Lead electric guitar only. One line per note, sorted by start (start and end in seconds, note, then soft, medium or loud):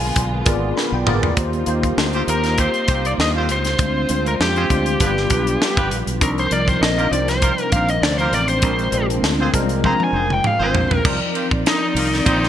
0.00 0.77 G#5 loud
2.30 2.60 A#4 medium
2.60 3.07 C5 medium
3.06 3.11 D5 medium
3.21 3.29 D#5 medium
3.52 4.27 C5 loud
4.28 4.33 A#4 medium
4.42 5.88 G4 medium
6.23 6.28 A#4 medium
6.39 6.53 C5 medium
6.53 6.69 D5 medium
6.68 6.82 C5 medium
6.83 7.12 D#5 medium
7.12 7.29 D5 medium
7.29 7.70 C5 loud
7.72 7.89 F5 loud
7.90 8.02 D#5 medium
8.02 8.18 D5 medium
8.18 8.34 C5 medium
8.34 8.49 D5 loud
8.49 9.06 C5 medium
9.86 10.02 A#5 loud
10.04 10.33 G#5 loud
10.33 10.47 G5 medium
10.47 10.62 F5 medium
10.63 11.03 C5 medium
11.68 12.23 D#4 medium
12.26 12.49 D#4 medium